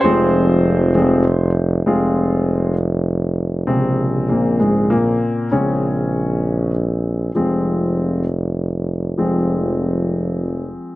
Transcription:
<<
  \new Staff \with { instrumentName = "Grand piano" } { \clef bass \time 6/8 \key bes \minor \tempo 4. = 66 << { <c' c''>2~ <c' c''>8 r8 | r2. | <c c'>4 <bes, bes>8 <aes, aes>8 <bes, bes>4 | des'2 r4 |
r2. | r2. | } \\ { <f aes>4. <f aes c'>8 r4 | <aes c' f'>4. r4. | <des aes>2. | <des aes c'>2. |
<f aes c'>4. r4. | <f aes c'>2. | } >> }
  \new Staff \with { instrumentName = "Tuba" } { \clef bass \time 6/8 \key bes \minor f,,2. | f,,2. | bes,,2~ bes,,8 r8 | bes,,2. |
f,,2. | f,,2~ f,,8 r8 | }
>>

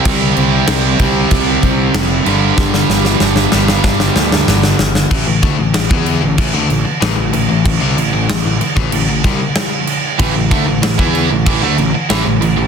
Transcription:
<<
  \new Staff \with { instrumentName = "Distorted electric guitar" } { \clef bass \time 4/4 \key a \minor \tempo 4 = 94 <c g c'>2.~ <c g c'>8 <g, d g>8~ | <g, d g>2.~ <g, d g>8 r8 | r1 | r1 |
<a, e>16 <a, e>16 <d a>16 <a, e>16 <a, e>16 <e b e'>8 <a, e>16 <a, e>16 <d a>16 <a, e>16 r16 <a, e>16 <a, e>16 <a, e>16 <a, e>16 | }
  \new Staff \with { instrumentName = "Overdriven electric guitar" } { \clef bass \time 4/4 \key a \minor <c g c'>4. <c g c'>2 <g, d g>8~ | <g, d g>4. <g, d g>2 r8 | <a, e>16 <a, e>16 <d a>16 <a, e>16 <a, e>16 <e b e'>8 <a, e>16 <a, e>16 <d a>16 <a, e>16 r16 <a, e>16 <a, e>16 <a, e>16 <a, e>16 | <a, e>16 <c g>16 <a, e>16 <a, e>16 <a, e>16 <a, e>16 r16 <a, e>16 <a, e>16 <a, e>16 <c g>16 r4 r16 |
<a, e>16 <a, e>16 <d a>16 <a, e>16 <a, e>16 <e b e'>8 <a, e>16 <a, e>16 <d a>16 <a, e>16 r16 <a, e>16 <a, e>16 <a, e>16 <a, e>16 | }
  \new Staff \with { instrumentName = "Picked electric bass" } { \clef bass \time 4/4 \key a \minor c,8 c,8 c,8 c,8 c,8 c,8 f,,8 g,,8 | g,,8 g,,8 g,,8 g,,8 g,,8 d,8 g,,8 g,,8 | a,,16 a,,16 d,16 a,,16 a,,16 e,8 a,,16 a,,16 d,16 a,,16 r16 a,,16 a,,16 a,,16 a,,16 | a,,16 c,16 a,,16 a,,16 a,,16 a,,16 r16 a,,16 a,,16 a,,16 c,16 r4 r16 |
a,,16 a,,16 d,16 a,,16 a,,16 e,8 a,,16 a,,16 d,16 a,,16 r16 a,,16 a,,16 a,,16 a,,16 | }
  \new DrumStaff \with { instrumentName = "Drums" } \drummode { \time 4/4 <cymc bd>8 cymc8 <cymc sn>8 <cymc bd>8 <cymc bd>8 <cymc bd>8 <cymc sn>8 cymc8 | <bd sn>16 sn16 sn16 sn16 sn16 sn16 sn16 sn16 <bd sn>16 sn16 sn16 sn16 sn16 sn16 sn16 sn16 | <cymc bd>8 <cymc bd>8 <cymc sn>16 bd16 cymc8 <cymc bd>8 cymc8 <cymc sn>8 cymc8 | <cymc bd>8 cymc8 <cymc sn>8 cymc16 bd16 cymc8 <cymc bd>8 <cymc sn>8 cymc8 |
<cymc bd>8 <cymc bd>8 <cymc sn>16 bd16 cymc8 <cymc bd>8 cymc8 <cymc sn>8 cymc8 | }
>>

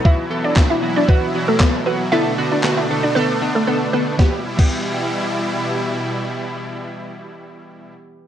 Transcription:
<<
  \new Staff \with { instrumentName = "Synth pluck" } { \time 4/4 \key e \minor \tempo 4 = 116 <e' e''>8 r16 <d' d''>16 r16 <e' e''>16 r16 <d' d''>16 <b b'>16 r8 <a a'>16 <b b'>16 r16 <b b'>16 r16 | <e' e''>8 r16 <d' d''>16 r16 <e' e''>16 r16 <d' d''>16 <b b'>16 r8 <a a'>16 <b b'>16 r16 <b b'>16 r16 | b16 r8 b2~ b16 r4 | r1 | }
  \new Staff \with { instrumentName = "Synth keys" } { \time 4/4 \key e \minor <e b fis'>8 <e b a'>8 <e b d'>8 <e b fis'>8 <e b fis'>8 <e b fis'>8 <e b a'>8 <e b fis'>8 | <d b a'>8 <d b fis'>8 <d b fis'>8 <d b a'>8 <d b a'>8 <d b d'>8 <d b a'>8 <d b a'>8 | <e b g'>16 r8 <e b g'>2.~ <e b g'>16~ | <e b g'>1 | }
  \new Staff \with { instrumentName = "Supersaw synth" } { \time 4/4 \key e \minor << { <fis e'>1 | <a d'>1 | <g e'>1~ | <g e'>1 | } \\ { b,1~ | b,1 | r1 | r1 | } >> }
  \new DrumStaff \with { instrumentName = "Drums" } \drummode { \time 4/4 bd4 <hc bd sn>4 bd4 <hc bd sn>4 | r4 <hc sn>4 r4 r4 | <bd sn>8. <cymc bd>16 r4 r4 r4 | r4 r4 r4 r4 | }
>>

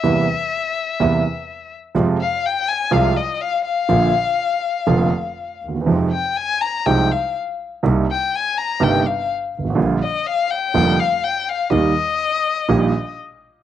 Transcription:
<<
  \new Staff \with { instrumentName = "Violin" } { \time 4/4 \key bes \mixolydian \tempo 4 = 124 fes''2.~ fes''8 r8 | r8 f''8 g''8 aes''8 f''8 ees''8 f''8 f''8~ | f''2.~ f''8 r8 | r8 g''8 aes''8 bes''8 g''8 f''8 r4 |
r8 g''8 aes''8 bes''8 g''8 f''8 r4 | r8 ees''8 f''8 g''4 f''8 g''8 f''8 | ees''2. r4 | }
  \new Staff \with { instrumentName = "Grand piano" } { \clef bass \time 4/4 \key bes \mixolydian <e, c e g bes e'>8 r4. <e, c e g bes e'>8 r4. | <f, c f aes f'>8 r4. <c, c f aes f'>8 r4. | <bes,, bes, d f bes f'>8 r4. <f,, f, d f bes f'>8 r4 r32 d,32 ees,32 fes,32 | <f, c f aes ees'>8 r4. <c, c f aes ees'>8 r4. |
<c, c g bes ees'>8 r4. <g,, g, c g bes ees'>8 r4 r32 g,,32 aes,,32 a,,32 | <bes,, bes, d g bes f'>8 r4. <f,, f, d g bes f'>8 r4. | <ees, ees g bes g'>8 r4. <bes,, bes, ees g bes g'>8 r4. | }
  \new Staff \with { instrumentName = "Double bass" } { \clef bass \time 4/4 \key bes \mixolydian e,8 r4. e,8 r4. | f,8 r4. c,8 r4. | bes,,8 r4. f,,8 r4 ees,8 | f,8 r4. c,8 r4. |
c,8 r4. g,,8 r4 aes,,8 | bes,,8 r4. f,,8 r4. | ees,8 r4. bes,,8 r4. | }
>>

